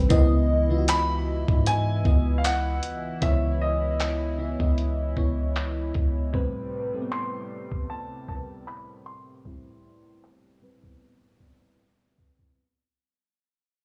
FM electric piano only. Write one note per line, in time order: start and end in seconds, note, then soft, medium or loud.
0.00 0.13 A2 medium
0.00 0.12 G3 medium
0.00 0.12 C4 medium
0.00 0.13 A4 loud
0.00 0.13 B4 loud
0.09 0.49 C#3 loud
0.09 0.49 B3 loud
0.09 0.49 E4 loud
0.09 0.50 D#5 loud
0.69 1.59 C#3 medium
0.69 1.60 B3 medium
0.69 1.60 E4 medium
0.69 0.76 F4 medium
0.78 1.64 F#4 medium
2.04 2.82 C#3 medium
2.04 2.83 B3 medium
2.04 2.83 E4 medium
2.04 2.83 D#5 medium
3.21 3.99 C#3 medium
3.21 4.00 B3 medium
3.21 4.00 E4 medium
3.21 4.00 C#5 loud
4.38 4.52 C#3 medium
4.38 4.53 B3 medium
4.38 4.53 E4 medium
4.38 4.53 E5 medium
4.59 4.98 C#3 medium
4.59 4.99 B3 medium
4.59 4.99 E4 medium
4.59 4.99 D#5 medium
5.16 5.94 C#3 medium
5.16 5.94 B3 medium
5.16 5.95 E4 medium
5.16 5.95 C#5 medium
6.33 6.72 A2 loud
6.33 6.72 G3 loud
6.33 6.73 C4 loud
6.33 6.73 B4 loud
6.93 7.83 A2 medium
6.93 7.83 G3 medium
6.93 7.84 C4 medium
6.93 6.99 A4 medium
7.01 7.87 B3 medium
8.27 9.06 A2 medium
8.27 9.06 G3 medium
8.27 9.06 C4 medium
8.27 8.36 A#4 medium
8.36 9.10 B4 medium
9.44 10.23 A2 medium
9.44 10.23 G3 medium
9.44 10.23 C4 medium
9.44 10.24 E4 loud
10.61 10.76 A2 medium
10.61 10.76 G3 medium
10.61 10.76 C4 medium
10.61 10.77 B4 medium
10.82 11.22 A2 medium
10.82 11.22 G3 medium
10.82 11.23 B3 medium
10.82 11.22 C4 medium
11.39 12.17 A2 medium
11.39 12.18 G3 medium
11.39 12.18 B3 medium
11.39 11.60 D5 medium
11.47 12.21 C4 medium
11.61 11.78 E5 medium
11.79 11.99 G5 medium
12.01 12.53 B5 medium